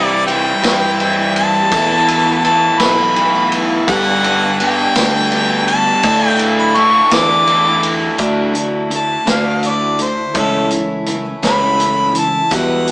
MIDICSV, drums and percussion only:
0, 0, Header, 1, 2, 480
1, 0, Start_track
1, 0, Key_signature, 2, "major"
1, 0, Tempo, 720288
1, 1142, Time_signature, 6, 3, 24, 8
1, 8607, End_track
2, 0, Start_track
2, 0, Title_t, "Drums"
2, 185, Note_on_c, 9, 51, 74
2, 187, Note_on_c, 9, 54, 28
2, 251, Note_off_c, 9, 51, 0
2, 254, Note_off_c, 9, 54, 0
2, 309, Note_on_c, 9, 54, 27
2, 376, Note_off_c, 9, 54, 0
2, 424, Note_on_c, 9, 36, 85
2, 426, Note_on_c, 9, 54, 92
2, 427, Note_on_c, 9, 51, 100
2, 430, Note_on_c, 9, 38, 122
2, 490, Note_off_c, 9, 36, 0
2, 492, Note_off_c, 9, 54, 0
2, 493, Note_off_c, 9, 51, 0
2, 497, Note_off_c, 9, 38, 0
2, 666, Note_on_c, 9, 51, 74
2, 732, Note_off_c, 9, 51, 0
2, 790, Note_on_c, 9, 54, 30
2, 857, Note_off_c, 9, 54, 0
2, 906, Note_on_c, 9, 51, 68
2, 972, Note_off_c, 9, 51, 0
2, 1026, Note_on_c, 9, 54, 27
2, 1093, Note_off_c, 9, 54, 0
2, 1144, Note_on_c, 9, 36, 120
2, 1144, Note_on_c, 9, 54, 91
2, 1147, Note_on_c, 9, 51, 100
2, 1210, Note_off_c, 9, 54, 0
2, 1211, Note_off_c, 9, 36, 0
2, 1213, Note_off_c, 9, 51, 0
2, 1389, Note_on_c, 9, 51, 73
2, 1455, Note_off_c, 9, 51, 0
2, 1622, Note_on_c, 9, 54, 28
2, 1629, Note_on_c, 9, 51, 74
2, 1689, Note_off_c, 9, 54, 0
2, 1696, Note_off_c, 9, 51, 0
2, 1746, Note_on_c, 9, 54, 29
2, 1812, Note_off_c, 9, 54, 0
2, 1863, Note_on_c, 9, 51, 101
2, 1864, Note_on_c, 9, 36, 82
2, 1864, Note_on_c, 9, 54, 87
2, 1866, Note_on_c, 9, 38, 110
2, 1930, Note_off_c, 9, 51, 0
2, 1930, Note_off_c, 9, 54, 0
2, 1931, Note_off_c, 9, 36, 0
2, 1933, Note_off_c, 9, 38, 0
2, 2107, Note_on_c, 9, 51, 78
2, 2174, Note_off_c, 9, 51, 0
2, 2226, Note_on_c, 9, 54, 31
2, 2292, Note_off_c, 9, 54, 0
2, 2344, Note_on_c, 9, 51, 78
2, 2411, Note_off_c, 9, 51, 0
2, 2467, Note_on_c, 9, 54, 30
2, 2533, Note_off_c, 9, 54, 0
2, 2585, Note_on_c, 9, 36, 125
2, 2585, Note_on_c, 9, 54, 100
2, 2588, Note_on_c, 9, 51, 113
2, 2651, Note_off_c, 9, 54, 0
2, 2652, Note_off_c, 9, 36, 0
2, 2655, Note_off_c, 9, 51, 0
2, 2827, Note_on_c, 9, 51, 75
2, 2893, Note_off_c, 9, 51, 0
2, 3065, Note_on_c, 9, 51, 82
2, 3068, Note_on_c, 9, 54, 31
2, 3131, Note_off_c, 9, 51, 0
2, 3134, Note_off_c, 9, 54, 0
2, 3186, Note_on_c, 9, 54, 30
2, 3253, Note_off_c, 9, 54, 0
2, 3301, Note_on_c, 9, 54, 94
2, 3302, Note_on_c, 9, 51, 108
2, 3304, Note_on_c, 9, 36, 86
2, 3305, Note_on_c, 9, 38, 119
2, 3367, Note_off_c, 9, 54, 0
2, 3369, Note_off_c, 9, 51, 0
2, 3371, Note_off_c, 9, 36, 0
2, 3372, Note_off_c, 9, 38, 0
2, 3542, Note_on_c, 9, 51, 79
2, 3609, Note_off_c, 9, 51, 0
2, 3667, Note_on_c, 9, 54, 29
2, 3733, Note_off_c, 9, 54, 0
2, 3783, Note_on_c, 9, 51, 75
2, 3850, Note_off_c, 9, 51, 0
2, 3906, Note_on_c, 9, 54, 31
2, 3973, Note_off_c, 9, 54, 0
2, 4019, Note_on_c, 9, 51, 103
2, 4023, Note_on_c, 9, 36, 116
2, 4030, Note_on_c, 9, 54, 96
2, 4086, Note_off_c, 9, 51, 0
2, 4089, Note_off_c, 9, 36, 0
2, 4097, Note_off_c, 9, 54, 0
2, 4259, Note_on_c, 9, 51, 76
2, 4326, Note_off_c, 9, 51, 0
2, 4389, Note_on_c, 9, 54, 30
2, 4456, Note_off_c, 9, 54, 0
2, 4499, Note_on_c, 9, 51, 78
2, 4566, Note_off_c, 9, 51, 0
2, 4740, Note_on_c, 9, 51, 94
2, 4742, Note_on_c, 9, 36, 85
2, 4742, Note_on_c, 9, 54, 97
2, 4743, Note_on_c, 9, 38, 114
2, 4806, Note_off_c, 9, 51, 0
2, 4808, Note_off_c, 9, 36, 0
2, 4809, Note_off_c, 9, 54, 0
2, 4810, Note_off_c, 9, 38, 0
2, 4865, Note_on_c, 9, 54, 29
2, 4932, Note_off_c, 9, 54, 0
2, 4980, Note_on_c, 9, 51, 73
2, 5047, Note_off_c, 9, 51, 0
2, 5219, Note_on_c, 9, 51, 74
2, 5224, Note_on_c, 9, 54, 28
2, 5285, Note_off_c, 9, 51, 0
2, 5291, Note_off_c, 9, 54, 0
2, 5452, Note_on_c, 9, 42, 89
2, 5458, Note_on_c, 9, 36, 110
2, 5518, Note_off_c, 9, 42, 0
2, 5524, Note_off_c, 9, 36, 0
2, 5696, Note_on_c, 9, 42, 67
2, 5762, Note_off_c, 9, 42, 0
2, 5937, Note_on_c, 9, 42, 71
2, 6004, Note_off_c, 9, 42, 0
2, 6178, Note_on_c, 9, 42, 100
2, 6179, Note_on_c, 9, 36, 76
2, 6181, Note_on_c, 9, 38, 103
2, 6245, Note_off_c, 9, 36, 0
2, 6245, Note_off_c, 9, 42, 0
2, 6248, Note_off_c, 9, 38, 0
2, 6415, Note_on_c, 9, 42, 72
2, 6482, Note_off_c, 9, 42, 0
2, 6655, Note_on_c, 9, 42, 73
2, 6722, Note_off_c, 9, 42, 0
2, 6894, Note_on_c, 9, 42, 97
2, 6897, Note_on_c, 9, 36, 113
2, 6960, Note_off_c, 9, 42, 0
2, 6964, Note_off_c, 9, 36, 0
2, 7134, Note_on_c, 9, 42, 70
2, 7200, Note_off_c, 9, 42, 0
2, 7372, Note_on_c, 9, 42, 73
2, 7439, Note_off_c, 9, 42, 0
2, 7618, Note_on_c, 9, 36, 77
2, 7618, Note_on_c, 9, 42, 90
2, 7621, Note_on_c, 9, 38, 107
2, 7684, Note_off_c, 9, 36, 0
2, 7684, Note_off_c, 9, 42, 0
2, 7688, Note_off_c, 9, 38, 0
2, 7862, Note_on_c, 9, 42, 72
2, 7928, Note_off_c, 9, 42, 0
2, 8095, Note_on_c, 9, 42, 69
2, 8162, Note_off_c, 9, 42, 0
2, 8335, Note_on_c, 9, 42, 96
2, 8339, Note_on_c, 9, 36, 107
2, 8342, Note_on_c, 9, 54, 104
2, 8401, Note_off_c, 9, 42, 0
2, 8406, Note_off_c, 9, 36, 0
2, 8409, Note_off_c, 9, 54, 0
2, 8459, Note_on_c, 9, 54, 33
2, 8526, Note_off_c, 9, 54, 0
2, 8579, Note_on_c, 9, 42, 67
2, 8607, Note_off_c, 9, 42, 0
2, 8607, End_track
0, 0, End_of_file